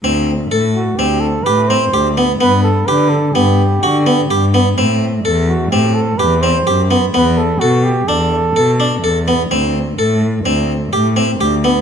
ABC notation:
X:1
M:5/4
L:1/8
Q:1/4=127
K:Dmix
V:1 name="Flugelhorn"
z3 F G A B c2 z | B A B A G4- G z | z3 F G A B c2 z | B A F G A4- A z |
z8 z2 |]
V:2 name="Harpsichord"
C2 A2 C2 G C G B, | B,2 G2 B,2 F B, G B, | C2 A2 C2 G C G B, | B,2 A2 D2 A D A B, |
C2 A2 C2 G C G B, |]
V:3 name="Cello" clef=bass
D,,2 A,,2 D,,2 A,,2 D,,2 | G,,2 D,2 G,,2 D,2 G,,2 | A,,2 E,,2 A,,2 E,,2 F,,2 | E,,2 B,,2 E,,2 B,,2 E,,2 |
D,,2 A,,2 D,,2 A,,2 D,,2 |]